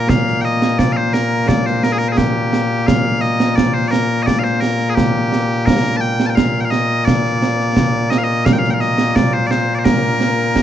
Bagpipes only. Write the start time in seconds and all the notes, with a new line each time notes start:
Already playing: A#2 A#3
0.09 F5
0.41 D#5 G5
0.79 D5
0.93 F5
0.97 C5
1.13 A#4
1.48 D5
1.66 C5
1.84 A#4
1.92 G#4
1.98 A#4
2.09 G#4 C5
2.18 G4
2.87 F5
3.21 D#5
3.56 D5
3.73 C5
3.88 A#4 D5
4.23 D5 D#5
4.39 F5
4.44 C5
4.61 A#4
4.89 G#4
4.95 G4
5.66 A#4
5.97 A5
6.01 G5
6.26 G5 A5
6.35 F5
6.60 G5
6.65 F5
6.70 D#5
7.05 D5
8.11 D#5
8.18 F5
8.24 D#5
8.45 F5
8.53 G5
8.59 F5
8.70 F5 G5
8.80 D#5
9.16 D5
9.33 C5
9.46 D5
9.51 C5
9.75 D5
9.79 C5
9.85 A#4